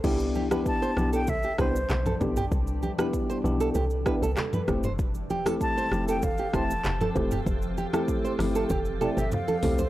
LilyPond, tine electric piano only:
\new Staff \with { instrumentName = "Tine electric piano" } { \time 4/4 \key c \major \tempo 4 = 97 <b d' e' g'>8. <b d' e' g'>8. <b d' e' g'>8 r8 <b d' e' g'>16 r8. <b d' e' g'>16 r16 | r8. <b d' e' g'>8. <b d' e' g'>8 r8 <b d' e' g'>16 r8. <a c' e' g'>16 r16 | r8. <a c' e' g'>8. <a c' e' g'>8 r8 <a c' e' g'>16 r8. <a c' e' g'>16 r16 | r8. <a c' e' g'>8. <a c' e' g'>8 r8 <a c' e' g'>16 r8. <a c' e' g'>16 r16 | }